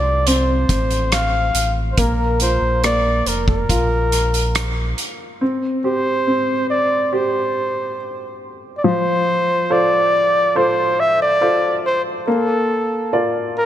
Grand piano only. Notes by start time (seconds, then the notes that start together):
Already playing: F3 C4 A4
0.27 C4
1.98 A#3
2.41 F4
2.84 A#3
3.69 F4
5.41 C4
5.84 G4
6.27 C4
7.13 G4
8.84 F3
9.70 F4 A4 C5
10.55 F4 A4 C5
11.41 F4 A4 C5
12.28 A#3
13.13 F4 A#4 D5